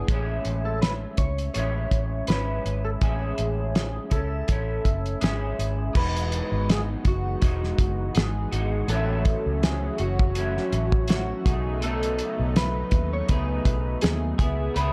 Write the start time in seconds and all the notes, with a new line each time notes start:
Already playing: D4 G#4
0.07 A1 A2 G#3, kick, closed hi-hat
0.12 C#4 E4
0.45 A1, closed hi-hat
0.65 A4
0.82 B4, snare, closed hi-hat
1.17 C#2 C#5, kick, closed hi-hat
1.38 closed hi-hat
1.54 A1 A2 G#3 C#4 C#5, closed hi-hat
1.59 E4
1.91 A1, kick, closed hi-hat
2.27 G#1 G#3 C#4 B4, snare, closed hi-hat
2.32 E4
2.65 G#1, closed hi-hat
2.85 A4
3.01 A1 A2 G#3 C#4 E4 G#4, kick, closed hi-hat
3.38 A1, closed hi-hat
3.75 snare, closed hi-hat
4.10 C#2 C#4 E4 A4, kick, closed hi-hat
4.48 A1 A2 C#4 E4, kick, closed hi-hat
4.85 F#1, kick, closed hi-hat
5.06 closed hi-hat
5.21 G#1 G#3 C#4 E4 G#4, snare, closed hi-hat
5.59 G#1, closed hi-hat
5.93 E1 E3 G#3 B3 D#4 F#4 B4, kick, crash
5.99 F#4
6.17 closed hi-hat
6.32 closed hi-hat
6.52 G#1
6.70 G#4, snare, closed hi-hat
7.05 F#1 F#4, kick, closed hi-hat
7.41 E1 E3 G#3 D#4, kick, closed hi-hat
7.46 F#4
7.63 snare
7.79 F#1, kick, closed hi-hat
8.15 G#1 G#4, snare, closed hi-hat
8.51 G#1 G#3 D#4 F#4, closed hi-hat
8.88 A1 A2 F#3 A3 C#4 A4, closed hi-hat
8.92 C#4 E4
9.25 kick, closed hi-hat
9.46 C#2
9.63 G#4, snare, closed hi-hat
9.98 F#1 F#4, closed hi-hat
10.19 kick
10.35 A2 F#3 C#4 E4, closed hi-hat
10.57 snare
10.72 A1, closed hi-hat
10.92 kick
11.08 F#4, snare, closed hi-hat
11.46 B1 C#3 F#3 A3 B3 D#4 G#4, kick, closed hi-hat
11.81 B2 A3 D#4 A4, closed hi-hat
12.03 closed hi-hat
12.19 closed hi-hat
12.39 B1
12.56 B4, snare, closed hi-hat
12.91 D#2, kick, closed hi-hat
13.13 C#5
13.28 C#2 B2 A3 D#4 B4, kick, closed hi-hat
13.32 G#4
13.65 B1, kick, closed hi-hat
14.01 D#2 G#4, snare, closed hi-hat
14.38 C#2 B2 C#3 G#3 B3 E4 G#4, kick, closed hi-hat
14.74 C#2 C#3 B3 B4, closed hi-hat
14.79 E4 G#4